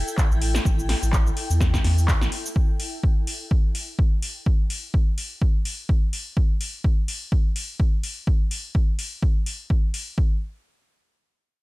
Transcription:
0.00 2.56 E4 medium
0.00 2.56 A4 medium
0.00 2.56 G5 medium
0.08 shaker medium
0.18 kick loud
0.18 clap loud
0.18 shaker medium
0.31 0.59 A1 medium
0.31 shaker soft
0.42 open hi-hat loud
0.55 snare medium
0.55 shaker medium
0.65 0.95 A1 loud
0.65 kick loud
0.65 shaker medium
0.79 shaker soft
0.89 snare medium
0.89 open hi-hat loud
1.02 1.31 A1 loud
1.02 shaker medium
1.13 kick loud
1.13 clap loud
1.13 shaker medium
1.27 shaker soft
1.37 open hi-hat loud
1.50 1.78 E2 medium
1.50 shaker medium
1.61 kick loud
1.61 snare medium
1.61 shaker medium
1.74 kick medium
1.74 snare medium
1.74 shaker soft
1.84 2.14 E2 medium
1.84 snare soft
1.84 open hi-hat loud
1.98 shaker medium
2.08 kick loud
2.08 clap loud
2.08 shaker medium
2.21 2.28 A1 loud
2.21 snare medium
2.21 shaker soft
2.32 open hi-hat loud
2.46 shaker medium
2.56 kick loud
2.80 open hi-hat loud
3.03 kick loud
3.27 open hi-hat loud
3.51 kick loud
3.75 open hi-hat loud
3.99 kick loud
4.22 open hi-hat loud
4.46 kick loud
4.70 open hi-hat loud
4.94 kick loud
5.18 open hi-hat loud
5.42 kick loud
5.65 open hi-hat loud
5.89 kick loud
6.13 open hi-hat loud
6.37 kick loud
6.61 open hi-hat loud
6.84 kick loud
7.08 open hi-hat loud
7.32 kick loud
7.56 open hi-hat loud
7.80 kick loud
8.03 open hi-hat loud
8.27 kick loud
8.51 open hi-hat loud
8.75 kick loud
8.99 open hi-hat loud
9.23 kick loud
9.46 open hi-hat medium
9.70 kick loud
9.94 open hi-hat medium
10.18 kick loud

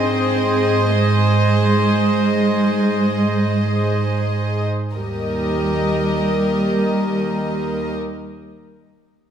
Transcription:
0.00 4.65 G#2 soft
0.00 0.94 C4 medium
0.00 4.65 G#4 soft
0.00 4.69 C5 medium
0.00 4.65 D#5 soft
0.93 4.23 G#3 medium
4.94 7.96 D#2 soft
4.94 7.95 G3 soft
4.94 7.96 G4 soft
4.94 7.94 A#4 soft
4.94 7.95 A#4 soft
4.94 7.94 D#5 soft

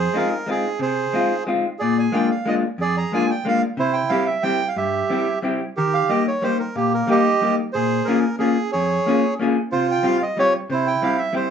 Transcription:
0.00 0.29 G#4 medium
0.00 0.18 C5 medium
0.14 0.31 G#3 medium
0.14 0.32 C4 medium
0.14 0.32 D#4 medium
0.14 0.32 F4 medium
0.14 0.50 A#4 medium
0.46 0.64 G#3 medium
0.46 0.65 C4 soft
0.46 0.65 D#4 soft
0.46 0.65 F4 soft
0.51 0.80 G#4 medium
0.79 1.05 C3 medium
0.79 1.44 G#4 medium
0.79 1.44 C5 medium
1.13 1.30 G#3 medium
1.13 1.31 C4 medium
1.13 1.31 D#4 soft
1.13 1.31 F4 medium
1.47 1.64 G#3 medium
1.47 1.64 C4 medium
1.47 1.64 D#4 soft
1.47 1.65 F4 medium
1.79 2.06 A#2 medium
1.79 2.26 G#4 medium
1.79 1.98 D5 medium
1.99 2.15 G#5 medium
2.12 2.30 G#3 medium
2.12 2.30 A#3 medium
2.12 2.31 D4 medium
2.12 2.30 F4 medium
2.12 2.29 G5 medium
2.31 2.48 F5 medium
2.46 2.63 G#3 medium
2.46 2.63 A#3 soft
2.46 2.64 D4 soft
2.46 2.64 F4 medium
2.46 2.55 D#5 medium
2.78 3.03 F2 medium
2.78 3.26 G#4 medium
2.78 2.96 D5 medium
2.98 3.12 A#5 medium
3.12 3.29 G#3 soft
3.12 3.29 A#3 soft
3.12 3.30 D4 medium
3.12 3.30 F4 medium
3.12 3.30 G#5 medium
3.30 3.46 G5 medium
3.45 3.62 G#3 medium
3.45 3.62 A#3 soft
3.45 3.62 D4 soft
3.45 3.62 F4 soft
3.45 3.62 F5 medium
3.77 4.02 C3 medium
3.77 4.24 E4 medium
3.77 3.96 C5 medium
3.93 4.10 G5 medium
4.09 4.27 G3 medium
4.09 4.27 C4 medium
4.09 4.27 E4 medium
4.09 4.28 G4 medium
4.09 4.27 F5 medium
4.26 4.43 E5 medium
4.43 4.60 G3 medium
4.43 4.60 C4 soft
4.43 4.61 E4 soft
4.43 4.61 G4 medium
4.43 4.69 G5 loud
4.68 4.77 F5 medium
4.76 5.01 G2 medium
4.76 5.39 G4 medium
4.76 5.39 E5 medium
5.10 5.26 G3 medium
5.10 5.26 C4 soft
5.10 5.27 E4 medium
5.10 5.27 G4 medium
5.42 5.59 G3 medium
5.42 5.60 C4 medium
5.42 5.60 E4 medium
5.42 5.60 G4 medium
5.77 6.02 D#3 medium
5.77 6.23 G4 medium
5.77 5.94 A#4 medium
5.94 6.10 F5 medium
6.09 6.26 G3 medium
6.09 6.26 A#3 medium
6.09 6.26 D#4 medium
6.09 6.27 G4 medium
6.09 6.26 D#5 medium
6.28 6.44 C#5 medium
6.42 6.59 G3 soft
6.42 6.59 A#3 soft
6.42 6.59 D#4 soft
6.42 6.59 G4 soft
6.42 6.58 C5 loud
6.59 6.76 A#4 medium
6.75 7.00 A#2 medium
6.75 7.21 A#3 medium
6.75 6.93 G4 medium
6.94 7.10 A#4 medium
7.07 7.24 G3 medium
7.07 7.25 A#3 medium
7.07 7.25 D#4 medium
7.07 7.25 G4 medium
7.07 7.55 G4 medium
7.11 7.55 D#5 medium
7.41 7.58 G3 medium
7.41 7.58 A#3 soft
7.41 7.58 D#4 soft
7.41 7.58 G4 soft
7.73 7.99 A#2 medium
7.73 8.20 G#4 medium
7.73 8.07 C5 medium
8.05 8.23 A#3 medium
8.05 8.24 C#4 soft
8.05 8.36 A#4 medium
8.09 8.24 F4 soft
8.09 8.24 G#4 medium
8.39 8.55 A#3 medium
8.39 8.56 C#4 soft
8.39 8.57 F4 soft
8.39 8.71 G#4 medium
8.39 8.57 G#4 soft
8.72 8.98 F2 medium
8.72 9.34 G#4 medium
8.72 9.34 C#5 medium
9.06 9.22 A#3 medium
9.06 9.23 C#4 medium
9.06 9.23 F4 soft
9.06 9.23 G#4 medium
9.39 9.55 A#3 medium
9.39 9.56 C#4 soft
9.39 9.56 F4 medium
9.39 9.57 G#4 medium
9.72 9.96 C3 medium
9.72 10.18 F4 medium
9.72 9.87 C5 medium
9.91 10.06 G5 medium
10.03 10.20 G3 medium
10.03 10.20 C4 medium
10.03 10.20 F4 medium
10.03 10.21 G4 medium
10.03 10.22 F5 medium
10.22 10.38 D#5 medium
10.37 10.53 G3 medium
10.37 10.54 C4 soft
10.37 10.54 F4 soft
10.37 10.55 G4 medium
10.37 10.53 C#5 loud
10.70 10.94 C3 medium
10.70 11.17 E4 medium
10.70 10.87 C5 medium
10.87 11.03 G5 medium
11.02 11.19 G3 medium
11.02 11.19 C4 soft
11.02 11.19 E4 medium
11.02 11.19 G4 medium
11.02 11.20 F5 medium
11.18 11.35 E5 medium
11.33 11.50 G3 medium
11.33 11.50 C4 soft
11.33 11.50 E4 soft
11.33 11.50 G4 medium
11.33 11.50 C5 medium

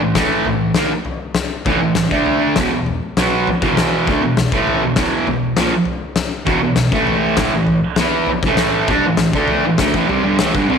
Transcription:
0.01 0.15 A2 medium
0.01 0.15 E3 medium
0.15 0.45 A2 medium
0.15 0.45 E3 medium
0.15 0.46 A3 loud
0.15 kick loud
0.15 snare loud
0.15 floor tom medium
0.45 0.71 A2 medium
0.45 0.71 E3 medium
0.45 floor tom medium
0.74 0.91 D#3 medium
0.74 0.91 A#3 loud
0.74 snare loud
0.74 floor tom medium
1.05 floor tom medium
1.34 snare loud
1.34 floor tom medium
1.65 1.80 A2 medium
1.65 1.81 E3 loud
1.65 kick loud
1.65 floor tom medium
1.81 2.06 A2 medium
1.81 2.06 E3 medium
1.95 snare loud
1.95 floor tom medium
2.11 2.56 D3 medium
2.11 2.56 A3 medium
2.11 2.56 D4 medium
2.11 kick loud
2.26 floor tom medium
2.56 2.71 E2 medium
2.56 2.72 B2 loud
2.56 kick loud
2.56 snare loud
2.56 floor tom medium
2.73 2.97 E2 medium
2.73 2.97 B2 medium
2.86 floor tom medium
3.17 3.47 B2 medium
3.17 3.48 F#3 medium
3.17 3.48 B3 medium
3.17 snare loud
3.17 floor tom medium
3.47 muted distorted electric guitar stroke medium
3.47 floor tom medium
3.62 4.07 E2 medium
3.62 4.07 B2 loud
3.62 4.08 E3 loud
3.62 kick loud
3.77 snare loud
3.77 floor tom medium
4.07 4.22 D3 medium
4.07 4.23 A3 medium
4.07 kick medium
4.07 floor tom medium
4.22 4.47 E2 medium
4.22 4.47 B2 medium
4.37 snare loud
4.37 floor tom medium
4.52 4.82 A2 medium
4.52 4.83 E3 medium
4.52 4.83 A3 medium
4.52 kick loud
4.67 floor tom medium
4.83 4.96 E2 medium
4.83 4.97 B2 medium
4.96 5.27 E2 medium
4.96 5.27 B2 medium
4.96 5.28 E3 medium
4.96 kick loud
4.96 snare loud
4.96 floor tom medium
5.27 5.52 E2 medium
5.27 5.53 B2 medium
5.27 floor tom medium
5.56 5.72 A#2 medium
5.56 5.72 F3 loud
5.56 snare loud
5.56 floor tom medium
5.85 floor tom medium
6.16 snare loud
6.16 floor tom medium
6.46 6.61 E2 medium
6.46 6.62 B2 medium
6.46 kick loud
6.46 floor tom medium
6.62 6.87 E2 medium
6.62 6.88 B2 medium
6.76 snare loud
6.76 floor tom medium
6.92 7.37 A2 medium
6.92 7.37 E3 medium
6.92 7.38 A3 loud
6.92 kick loud
7.07 floor tom medium
7.37 7.53 A2 medium
7.37 7.53 E3 loud
7.37 kick loud
7.37 snare loud
7.37 floor tom medium
7.55 7.79 A2 medium
7.55 7.79 E3 medium
7.67 floor tom medium
7.96 8.29 E3 medium
7.96 8.29 B3 medium
7.96 snare loud
7.96 floor tom medium
8.01 8.30 E4 medium
8.26 muted distorted electric guitar stroke medium
8.26 floor tom medium
8.43 8.90 A2 medium
8.43 8.90 E3 loud
8.43 kick loud
8.47 8.90 A3 loud
8.57 snare loud
8.57 floor tom medium
8.88 9.04 G3 medium
8.88 9.05 D4 loud
8.88 kick loud
8.88 floor tom medium
9.06 9.30 A2 medium
9.06 9.30 E3 medium
9.17 snare loud
9.17 floor tom medium
9.33 9.65 D3 medium
9.33 9.65 A3 medium
9.33 9.65 D4 medium
9.33 kick loud
9.48 floor tom medium
9.66 9.79 A2 medium
9.66 9.80 E3 medium
9.78 9.95 D3 medium
9.78 9.95 A3 medium
9.78 kick loud
9.78 snare loud
9.78 floor tom medium
9.94 10.09 A2 medium
9.94 10.09 E3 loud
9.94 kick medium
10.09 10.24 C3 loud
10.09 10.25 G3 medium
10.09 floor tom medium
10.24 10.39 G2 medium
10.24 10.39 D3 medium
10.39 10.55 A2 medium
10.39 10.55 E3 loud
10.39 snare loud
10.39 floor tom medium
10.54 10.70 G2 medium
10.54 10.68 D3 loud
10.54 kick medium
10.68 10.78 C3 loud
10.68 10.78 G3 medium
10.68 10.78 C4 loud
10.68 floor tom medium

